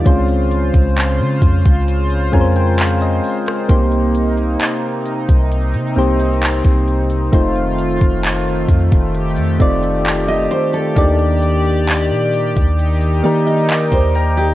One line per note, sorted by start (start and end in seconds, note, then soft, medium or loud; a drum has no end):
0.05 0.71 C#2 loud
0.05 3.66 C#3 medium
0.05 1.66 G#3 medium
0.05 1.66 C4 medium
0.05 1.67 C#4 medium
0.05 3.66 F4 medium
0.05 1.67 F4 medium
0.05 3.66 C5 medium
0.05 1.67 C5 medium
0.05 kick loud
0.05 closed hi-hat medium
0.28 closed hi-hat soft
0.51 closed hi-hat medium
0.74 1.21 C#2 loud
0.74 kick loud
0.74 closed hi-hat soft
0.96 clap loud
0.96 closed hi-hat medium
1.20 1.41 C#3 loud
1.42 1.64 F2 loud
1.42 kick loud
1.42 closed hi-hat medium
1.65 2.31 C#2 loud
1.65 kick loud
1.65 closed hi-hat medium
1.88 closed hi-hat medium
2.10 closed hi-hat medium
2.32 3.20 F2 loud
2.32 3.53 G#3 medium
2.32 3.54 C4 medium
2.32 3.54 C#4 medium
2.32 3.54 F4 medium
2.32 2.40 A#4 medium
2.32 2.54 G#5 medium
2.32 kick medium
2.41 3.58 C5 loud
2.56 2.77 G5 medium
2.56 closed hi-hat soft
2.78 3.00 F5 medium
2.78 clap loud
2.78 closed hi-hat medium
3.01 3.66 D#5 medium
3.01 closed hi-hat medium
3.24 open hi-hat medium
3.46 cross-stick loud
3.46 closed hi-hat medium
3.69 4.57 C2 loud
3.69 7.29 C3 medium
3.69 5.30 A#3 medium
3.69 5.49 A#3 medium
3.69 5.30 C4 medium
3.69 7.29 D#4 medium
3.69 5.30 D#4 medium
3.69 5.31 G4 medium
3.69 5.31 C5 medium
3.69 kick loud
3.69 closed hi-hat medium
3.92 closed hi-hat soft
4.15 closed hi-hat medium
4.38 closed hi-hat soft
4.60 clap loud
4.60 closed hi-hat medium
5.06 closed hi-hat medium
5.29 5.75 C2 loud
5.29 kick loud
5.29 closed hi-hat medium
5.51 7.31 C4 medium
5.51 closed hi-hat medium
5.74 5.96 C3 loud
5.74 closed hi-hat medium
5.96 6.62 C2 loud
5.96 7.17 A#3 medium
5.96 7.17 C4 medium
5.96 7.18 D#4 medium
5.96 7.18 G4 medium
5.96 7.18 C5 loud
6.19 closed hi-hat medium
6.43 clap loud
6.43 closed hi-hat medium
6.64 7.30 C2 loud
6.64 kick loud
6.64 closed hi-hat medium
6.88 closed hi-hat medium
7.10 closed hi-hat medium
7.32 7.98 F1 loud
7.32 10.93 D#3 medium
7.32 8.93 A3 medium
7.32 10.93 A3 medium
7.32 8.94 C4 medium
7.32 8.94 D#4 medium
7.32 9.13 F4 medium
7.32 8.94 F4 medium
7.32 8.95 C5 loud
7.32 kick loud
7.32 closed hi-hat medium
7.55 closed hi-hat soft
7.78 closed hi-hat medium
8.01 8.67 F1 loud
8.01 kick loud
8.01 closed hi-hat soft
8.23 clap loud
8.23 closed hi-hat medium
8.69 8.91 F2 loud
8.69 kick loud
8.69 closed hi-hat medium
8.92 9.39 F1 loud
8.92 kick loud
8.92 closed hi-hat medium
9.15 14.54 G4 medium
9.15 closed hi-hat medium
9.37 9.59 F2 loud
9.37 closed hi-hat medium
9.59 10.48 F1 loud
9.59 10.81 A3 medium
9.59 10.81 C4 medium
9.59 10.81 D#4 medium
9.59 10.81 F4 medium
9.59 10.82 D5 loud
9.59 kick loud
9.83 closed hi-hat medium
10.06 clap loud
10.06 closed hi-hat medium
10.28 10.50 D#5 medium
10.28 closed hi-hat medium
10.51 10.73 C5 medium
10.51 closed hi-hat medium
10.73 11.17 A4 medium
10.73 closed hi-hat medium
10.96 12.12 D#2 loud
10.96 12.57 A#3 medium
10.96 12.58 D4 medium
10.96 12.58 D#4 medium
10.96 12.58 G4 medium
10.96 12.77 D5 medium
10.96 12.58 D5 loud
10.96 kick loud
10.96 closed hi-hat loud
11.19 closed hi-hat soft
11.42 closed hi-hat medium
11.65 closed hi-hat soft
11.87 clap loud
11.87 closed hi-hat medium
12.10 12.53 A#2 loud
12.33 closed hi-hat medium
12.56 13.21 D#2 loud
12.56 kick loud
12.56 closed hi-hat medium
12.78 14.54 D#4 medium
12.78 closed hi-hat medium
13.01 closed hi-hat medium
13.23 13.89 D#3 loud
13.23 14.44 A#3 medium
13.23 14.45 D#4 medium
13.23 14.45 G4 medium
13.23 14.45 A#4 loud
13.23 14.44 D5 medium
13.47 13.90 D#5 medium
13.47 closed hi-hat medium
13.70 14.13 A#5 medium
13.70 14.13 D6 medium
13.70 clap loud
13.70 closed hi-hat medium
13.92 14.54 D#2 loud
13.92 14.15 C5 medium
13.92 kick loud
13.92 closed hi-hat medium
14.15 14.36 A#4 medium
14.15 14.37 G5 medium
14.15 14.37 A#5 medium
14.15 closed hi-hat medium
14.37 14.54 G4 medium
14.37 14.54 D#5 medium
14.37 14.54 G5 medium
14.37 closed hi-hat medium